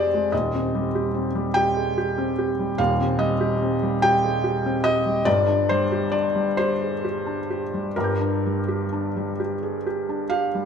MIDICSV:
0, 0, Header, 1, 2, 480
1, 0, Start_track
1, 0, Key_signature, -3, "minor"
1, 0, Tempo, 819672
1, 191, Time_signature, 6, 3, 24, 8
1, 2594, Tempo, 847458
1, 3554, Tempo, 888889
1, 4034, Tempo, 940439
1, 5891, End_track
2, 0, Start_track
2, 0, Title_t, "Felt piano"
2, 0, Program_c, 0, 0
2, 0, Control_c, 0, 64, 127
2, 0, Note_on_c, 0, 29, 57
2, 0, Note_on_c, 0, 41, 62
2, 0, Note_on_c, 0, 56, 46
2, 0, Note_on_c, 0, 60, 48
2, 0, Note_on_c, 0, 67, 56
2, 0, Note_on_c, 0, 68, 50
2, 0, Note_on_c, 0, 72, 87
2, 0, Note_on_c, 0, 74, 108
2, 82, Note_off_c, 0, 56, 0
2, 82, Note_on_c, 0, 56, 44
2, 146, Note_off_c, 0, 67, 0
2, 163, Note_off_c, 0, 29, 0
2, 166, Note_off_c, 0, 41, 0
2, 188, Note_off_c, 0, 74, 0
2, 189, Note_on_c, 0, 75, 78
2, 194, Note_on_c, 0, 27, 59
2, 195, Note_off_c, 0, 56, 0
2, 199, Control_c, 0, 64, 0
2, 200, Note_on_c, 0, 39, 56
2, 201, Note_off_c, 0, 60, 0
2, 201, Note_off_c, 0, 68, 0
2, 205, Note_off_c, 0, 72, 0
2, 290, Control_c, 0, 64, 127
2, 321, Note_on_c, 0, 60, 46
2, 437, Note_on_c, 0, 55, 53
2, 504, Note_off_c, 0, 60, 0
2, 558, Note_on_c, 0, 67, 45
2, 622, Note_off_c, 0, 55, 0
2, 670, Note_on_c, 0, 60, 52
2, 744, Note_off_c, 0, 67, 0
2, 792, Note_on_c, 0, 55, 51
2, 861, Note_off_c, 0, 60, 0
2, 903, Note_on_c, 0, 79, 108
2, 906, Note_off_c, 0, 75, 0
2, 914, Note_on_c, 0, 67, 55
2, 983, Note_off_c, 0, 55, 0
2, 1036, Note_on_c, 0, 68, 47
2, 1106, Note_off_c, 0, 67, 0
2, 1154, Note_off_c, 0, 68, 0
2, 1158, Note_on_c, 0, 67, 61
2, 1277, Note_on_c, 0, 60, 59
2, 1348, Note_off_c, 0, 67, 0
2, 1396, Note_on_c, 0, 67, 51
2, 1467, Note_off_c, 0, 60, 0
2, 1519, Note_on_c, 0, 55, 50
2, 1587, Note_off_c, 0, 67, 0
2, 1611, Note_off_c, 0, 27, 0
2, 1614, Note_off_c, 0, 39, 0
2, 1627, Note_on_c, 0, 27, 58
2, 1630, Note_on_c, 0, 77, 96
2, 1631, Note_off_c, 0, 79, 0
2, 1639, Note_on_c, 0, 39, 70
2, 1642, Control_c, 0, 64, 0
2, 1709, Note_off_c, 0, 55, 0
2, 1744, Control_c, 0, 64, 127
2, 1761, Note_on_c, 0, 60, 53
2, 1867, Note_on_c, 0, 75, 88
2, 1872, Note_off_c, 0, 77, 0
2, 1876, Note_on_c, 0, 55, 51
2, 1949, Note_off_c, 0, 60, 0
2, 1995, Note_on_c, 0, 67, 53
2, 2066, Note_off_c, 0, 55, 0
2, 2121, Note_on_c, 0, 60, 53
2, 2185, Note_off_c, 0, 67, 0
2, 2241, Note_on_c, 0, 55, 56
2, 2308, Note_off_c, 0, 60, 0
2, 2348, Note_off_c, 0, 75, 0
2, 2356, Note_on_c, 0, 79, 115
2, 2363, Note_on_c, 0, 67, 59
2, 2429, Note_off_c, 0, 55, 0
2, 2485, Note_on_c, 0, 68, 47
2, 2550, Note_off_c, 0, 67, 0
2, 2600, Note_off_c, 0, 68, 0
2, 2600, Note_on_c, 0, 67, 54
2, 2724, Note_on_c, 0, 60, 58
2, 2783, Note_off_c, 0, 67, 0
2, 2825, Note_on_c, 0, 75, 115
2, 2829, Note_off_c, 0, 79, 0
2, 2833, Note_on_c, 0, 67, 51
2, 2904, Note_off_c, 0, 60, 0
2, 2948, Note_on_c, 0, 55, 48
2, 3018, Note_off_c, 0, 67, 0
2, 3038, Note_off_c, 0, 27, 0
2, 3043, Note_off_c, 0, 39, 0
2, 3061, Note_on_c, 0, 74, 107
2, 3062, Note_off_c, 0, 75, 0
2, 3063, Note_on_c, 0, 31, 67
2, 3065, Note_off_c, 0, 55, 0
2, 3071, Note_on_c, 0, 43, 61
2, 3074, Control_c, 0, 64, 0
2, 3163, Control_c, 0, 64, 127
2, 3187, Note_on_c, 0, 62, 42
2, 3304, Note_off_c, 0, 74, 0
2, 3309, Note_on_c, 0, 72, 97
2, 3317, Note_on_c, 0, 55, 46
2, 3381, Note_off_c, 0, 62, 0
2, 3438, Note_on_c, 0, 67, 49
2, 3509, Note_off_c, 0, 55, 0
2, 3550, Note_on_c, 0, 74, 98
2, 3553, Note_on_c, 0, 62, 55
2, 3555, Note_off_c, 0, 72, 0
2, 3629, Note_off_c, 0, 67, 0
2, 3678, Note_on_c, 0, 55, 49
2, 3744, Note_off_c, 0, 62, 0
2, 3790, Note_off_c, 0, 74, 0
2, 3796, Note_on_c, 0, 72, 94
2, 3804, Note_on_c, 0, 67, 55
2, 3867, Note_off_c, 0, 55, 0
2, 3932, Note_on_c, 0, 68, 37
2, 3991, Note_off_c, 0, 67, 0
2, 4043, Note_off_c, 0, 68, 0
2, 4051, Note_on_c, 0, 67, 45
2, 4162, Note_on_c, 0, 62, 48
2, 4229, Note_off_c, 0, 67, 0
2, 4284, Note_on_c, 0, 67, 47
2, 4346, Note_off_c, 0, 62, 0
2, 4404, Note_on_c, 0, 55, 44
2, 4470, Note_off_c, 0, 67, 0
2, 4490, Note_off_c, 0, 31, 0
2, 4494, Note_off_c, 0, 43, 0
2, 4512, Note_off_c, 0, 72, 0
2, 4518, Note_on_c, 0, 70, 80
2, 4520, Control_c, 0, 64, 0
2, 4521, Note_on_c, 0, 31, 57
2, 4524, Note_on_c, 0, 79, 35
2, 4525, Note_on_c, 0, 43, 57
2, 4540, Note_on_c, 0, 86, 36
2, 4557, Note_on_c, 0, 91, 36
2, 4593, Note_off_c, 0, 55, 0
2, 4602, Control_c, 0, 64, 127
2, 4644, Note_on_c, 0, 62, 42
2, 4774, Note_on_c, 0, 55, 42
2, 4837, Note_off_c, 0, 62, 0
2, 4886, Note_on_c, 0, 67, 43
2, 4963, Note_off_c, 0, 55, 0
2, 5010, Note_on_c, 0, 62, 50
2, 5080, Note_off_c, 0, 67, 0
2, 5132, Note_on_c, 0, 55, 47
2, 5201, Note_off_c, 0, 62, 0
2, 5250, Note_off_c, 0, 70, 0
2, 5251, Note_on_c, 0, 67, 42
2, 5320, Note_off_c, 0, 55, 0
2, 5368, Note_on_c, 0, 68, 43
2, 5438, Note_off_c, 0, 67, 0
2, 5485, Note_off_c, 0, 68, 0
2, 5489, Note_on_c, 0, 67, 45
2, 5605, Note_on_c, 0, 62, 49
2, 5676, Note_off_c, 0, 67, 0
2, 5709, Note_on_c, 0, 77, 92
2, 5717, Note_on_c, 0, 67, 48
2, 5792, Note_off_c, 0, 62, 0
2, 5837, Note_on_c, 0, 55, 42
2, 5891, Note_off_c, 0, 31, 0
2, 5891, Note_off_c, 0, 43, 0
2, 5891, Note_off_c, 0, 55, 0
2, 5891, Note_off_c, 0, 67, 0
2, 5891, Note_off_c, 0, 77, 0
2, 5891, Note_off_c, 0, 79, 0
2, 5891, Note_off_c, 0, 86, 0
2, 5891, Note_off_c, 0, 91, 0
2, 5891, End_track
0, 0, End_of_file